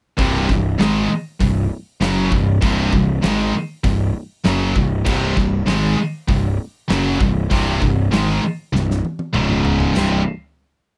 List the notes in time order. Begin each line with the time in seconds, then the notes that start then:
0.17 C1 C2 G2 C3, kick, open hi-hat
0.48 C1 C2 G2, kick, snare
0.78 G#1 G#2 D#3 G#3, snare, open hi-hat
1.09 muted distorted electric guitar stroke, muted picked electric bass stroke
1.40 C1 C2 G2, kick, open hi-hat
2.00 F#1 F#2 C#3 F#3, snare, open hi-hat
2.30 C1 C2 G2, kick
2.61 C1 C2 G2 C3, kick, open hi-hat
2.92 C1 C2 G2, kick
3.22 G#1 G#2 D#3 G#3, snare, open hi-hat
3.54 muted distorted electric guitar stroke, muted picked electric bass stroke
3.84 C1 C2 G2, kick, open hi-hat
4.44 F#1 F#2 C#3 F#3, snare, open hi-hat
4.76 C1 C2 G2, kick
5.04 C1 C2 G2 C3, kick, crash
5.36 C1 C2 G2, kick, snare
5.66 G#1 G#2 D#3 G#3, snare, open hi-hat
5.98 muted picked electric bass stroke, muted distorted electric guitar stroke
6.28 C1 C2 G2, kick, open hi-hat
6.89 F#1 F#2 C#3 F#3, snare, open hi-hat
7.20 C1 C2 G2, kick
7.51 C1 C2 G2 C3, kick, open hi-hat
7.81 C1 C2 G2, kick
8.11 G#1 G#2 D#3 G#3, snare, open hi-hat
8.42 muted picked electric bass stroke, muted distorted electric guitar stroke
8.73 C1 C2 G2, snare
8.90 snare
9.05 high tom
9.19 high tom
9.34 C#1 C#2 G#2 C#3, mid tom
9.50 mid tom
9.65 floor tom
9.80 floor tom
9.95 C1 C2 G2 C3, snare, splash